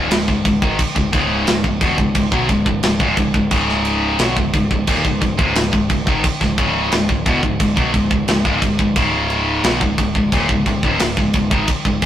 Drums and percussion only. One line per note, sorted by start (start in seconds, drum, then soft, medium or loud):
0.11 snare loud
0.11 crash medium
0.28 kick medium
0.45 kick medium
0.45 crash medium
0.62 kick loud
0.79 kick loud
0.79 crash medium
0.96 kick medium
1.13 kick loud
1.13 crash medium
1.47 snare loud
1.47 crash medium
1.64 kick medium
1.81 kick loud
1.81 crash medium
1.98 kick medium
2.15 kick loud
2.15 crash medium
2.32 kick loud
2.49 kick medium
2.49 crash medium
2.66 kick medium
2.83 snare loud
2.83 crash medium
3.00 kick loud
3.17 kick loud
3.17 crash medium
3.34 kick loud
3.51 kick loud
3.51 crash medium
3.69 snare soft
3.85 crash medium
4.19 snare loud
4.19 crash medium
4.37 kick medium
4.53 kick loud
4.53 crash medium
4.71 kick medium
4.87 kick loud
4.87 crash medium
5.05 kick medium
5.21 kick medium
5.21 crash medium
5.39 kick loud
5.55 snare loud
5.55 crash medium
5.73 kick medium
5.90 kick loud
5.90 crash medium
6.07 kick loud
6.24 kick loud
6.24 crash medium
6.41 kick medium
6.41 snare soft
6.58 kick loud
6.58 crash medium
6.92 snare loud
6.92 crash medium
7.09 kick medium
7.26 kick loud
7.26 crash medium
7.43 kick medium
7.60 kick loud
7.60 crash medium
7.77 kick loud
7.94 kick medium
7.94 crash medium
8.11 kick medium
8.28 snare loud
8.28 crash medium
8.45 kick loud
8.62 kick loud
8.62 crash medium
8.79 kick loud
8.96 kick loud
8.96 crash medium
9.30 crash medium
9.64 snare loud
9.64 crash medium
9.81 kick medium
9.98 kick loud
9.98 crash medium
10.15 kick medium
10.32 kick loud
10.32 crash medium
10.49 kick medium
10.66 kick medium
10.66 crash medium
10.83 kick loud
11.00 snare loud
11.00 crash medium
11.17 kick loud
11.33 kick loud
11.33 crash medium
11.51 kick loud
11.68 kick loud
11.68 crash medium
11.85 kick medium
12.02 kick loud
12.02 crash medium